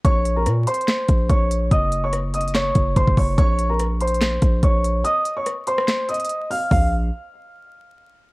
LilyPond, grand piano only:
\new Staff \with { instrumentName = "Grand piano" } { \time 4/4 \key bes \minor \tempo 4 = 144 <des'' des'''>8. <bes' bes''>16 r8 <c'' c'''>4. <des'' des'''>4 | <ees'' ees'''>8. <des'' des'''>16 r8 <ees'' ees'''>8 <des'' des'''>4 <c'' c'''>8 <des'' des'''>8 | <des'' des'''>8. <bes' bes''>16 r8 <c'' c'''>4. <des'' des'''>4 | <ees'' ees'''>8. <des'' des'''>16 r8 <c'' c'''>4 <ees'' ees'''>4 <f'' f'''>8 |
f''8 r2. r8 | }